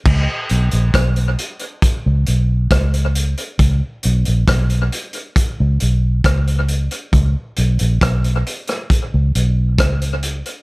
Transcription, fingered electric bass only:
0.06 0.26 C#2 loud
0.51 0.71 B1 loud
0.73 0.93 A#1 medium
0.94 1.35 B1 medium
2.06 2.26 C#2 medium
2.28 2.68 B1 medium
2.71 3.34 C#2 loud
3.60 3.80 C#2 loud
4.05 4.25 B1 loud
4.28 4.47 A#1 medium
4.48 4.88 B1 medium
5.60 5.79 C#2 medium
5.82 6.22 B1 medium
6.25 6.87 C#2 medium
7.13 7.34 C#2 loud
7.58 7.78 B1 medium
7.81 8.00 A#1 medium
8.02 8.42 B1 medium
9.14 9.33 C#2 medium
9.35 9.79 B1 medium
9.79 10.41 C#2 medium

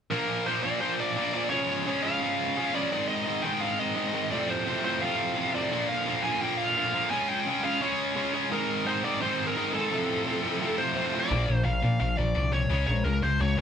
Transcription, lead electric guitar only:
0.11 0.47 A#4 medium
0.46 0.63 C5 medium
0.63 0.81 D5 medium
0.81 1.00 C5 medium
1.00 1.33 D5 medium
1.34 1.50 D5 medium
1.50 2.05 C#5 medium
2.02 2.75 F5 medium
2.74 3.07 D5 medium
3.08 3.45 D#5 loud
3.42 3.61 G5 medium
3.61 3.79 F5 medium
3.79 4.31 D#5 medium
4.31 4.50 D5 loud
4.50 4.84 C5 medium
4.85 5.03 C5 medium
5.02 5.51 F5 medium
5.55 5.87 D5 medium
5.89 6.23 F5 loud
6.23 6.41 G#5 loud
6.41 6.57 G5 loud
6.57 7.10 F5 loud
7.10 7.29 G#5 loud
7.29 7.62 G5 loud
7.64 7.82 F5 medium
7.82 8.30 C#5 medium
8.52 8.88 A#4 loud
8.86 9.04 C5 medium
9.04 9.21 D5 medium
9.22 9.48 C5 medium
9.47 9.73 A#4 medium
9.74 11.09 A4 medium
10.78 11.20 C5 medium
11.19 11.62 D5 loud
11.65 11.98 F5 loud
12.00 12.17 F5 loud
12.17 12.53 D5 loud
12.53 12.85 C#5 medium
12.87 13.04 C#5 medium
13.04 13.23 A#4 medium
13.23 13.41 C5 medium
13.41 13.58 C#5 medium

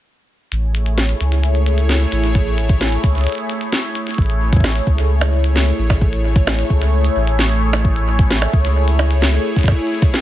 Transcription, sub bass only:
0.52 1.14 A1 medium
1.21 2.06 C#2 medium
2.12 2.97 A1 medium
3.04 3.27 C#2 medium
4.18 4.80 A1 medium
4.87 5.72 C#2 medium
5.79 6.64 A1 medium
6.70 7.09 C#2 medium
7.16 8.47 A1 loud
8.53 9.38 C#2 medium

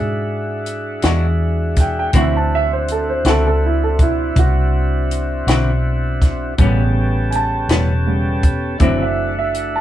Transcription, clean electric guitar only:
1.04 1.27 E3 medium
1.04 1.27 G#3 medium
1.04 1.26 D4 medium
1.04 1.26 F#4 medium
2.14 2.37 D3 medium
2.14 2.37 C4 medium
2.14 2.37 E4 medium
2.14 2.38 F#4 medium
3.26 3.49 D3 medium
3.26 3.49 C4 medium
3.26 3.48 E4 medium
3.26 3.48 F#4 medium
5.48 5.71 D3 medium
5.48 5.71 C4 medium
5.48 5.70 E4 medium
5.48 5.70 F#4 medium
6.59 6.81 A2 medium
6.59 6.82 G3 medium
6.59 6.82 B3 medium
6.59 6.82 C#4 medium
7.70 7.93 A2 medium
7.70 7.92 G3 medium
7.70 7.92 B3 medium
7.70 7.92 C#4 medium
8.81 9.03 D3 medium
8.81 9.03 F#3 medium
8.81 9.03 C4 medium
8.81 9.04 E4 medium

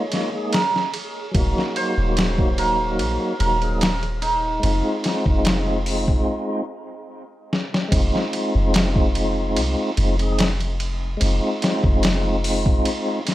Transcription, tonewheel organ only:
0.10 0.29 G#3 medium
0.10 0.30 A#3 medium
0.10 0.31 D#4 medium
0.14 0.31 F4 medium
0.32 0.63 G#3 medium
0.32 0.64 A#3 medium
0.32 0.65 D#4 medium
0.32 0.65 G#4 medium
1.32 3.34 F#3 medium
1.32 3.35 A#3 medium
1.37 3.36 D#4 medium
1.37 3.38 F#4 medium
3.39 3.58 F#3 medium
3.39 3.59 A#3 medium
3.39 3.59 D#4 medium
3.43 3.60 F#4 medium
3.60 3.92 F#3 medium
3.60 3.93 A#3 medium
3.60 3.93 D#4 medium
3.64 3.94 G#4 medium
4.60 6.62 G#3 medium
4.60 6.64 C4 medium
4.65 6.65 D#4 medium
4.65 6.66 F4 loud
7.88 9.91 G#3 medium
7.88 9.92 C4 medium
7.94 9.94 D#4 medium
7.94 9.95 F4 loud
9.96 10.15 G#3 medium
9.96 10.16 C4 medium
9.96 10.17 D#4 medium
9.96 10.17 F4 medium
10.18 10.50 G#3 medium
10.18 10.50 C4 medium
10.18 10.51 D#4 medium
10.18 10.52 G#4 medium
11.17 13.20 G#3 medium
11.17 13.21 C4 medium
11.23 13.23 D#4 medium
11.23 13.24 F4 loud
13.25 13.35 G#3 medium
13.25 13.35 C4 medium
13.25 13.35 D#4 medium
13.30 13.35 F4 medium

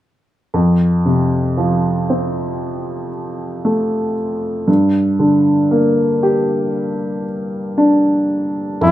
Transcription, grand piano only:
0.54 4.64 F2 soft
1.06 3.09 C3 soft
1.57 3.60 F3 soft
2.10 4.13 C4 soft
3.65 4.65 A3 soft
4.68 8.78 G2 soft
5.19 7.23 D3 soft
5.71 7.74 A#3 soft
6.23 8.26 G4 soft
7.78 8.78 D4 soft
8.81 8.91 F2 soft

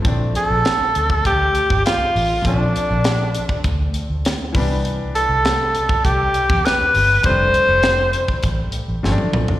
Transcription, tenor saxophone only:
0.36 1.22 A4 loud
1.26 1.82 G4 loud
1.86 2.42 F4 medium
2.47 3.62 D4 medium
5.15 6.06 A4 medium
6.05 6.67 G4 loud
6.65 7.25 B4 loud
7.26 8.41 C5 loud

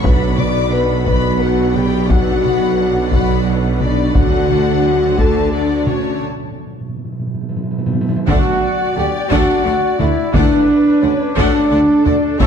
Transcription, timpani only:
0.04 1.03 B2 medium
6.21 6.28 B2 soft
6.29 6.35 B2 soft
6.36 6.42 B2 soft
6.44 6.50 B2 soft
6.51 6.57 B2 soft
6.59 6.65 B2 soft
6.67 6.72 B2 soft
6.73 6.79 B2 soft
6.81 6.88 B2 soft
6.89 6.95 B2 soft
6.97 7.04 B2 soft
7.05 7.11 B2 soft
7.12 7.18 B2 soft
7.19 7.26 B2 medium
7.27 7.33 B2 soft
7.34 7.40 B2 medium
7.41 7.48 B2 medium
7.49 7.55 B2 medium
7.56 7.62 B2 medium
7.63 7.70 B2 medium
7.71 7.77 B2 medium
7.78 7.85 B2 medium
7.86 7.92 B2 medium
7.93 8.00 B2 medium
8.01 8.08 B2 medium
8.09 8.15 B2 medium
8.16 8.23 B2 medium

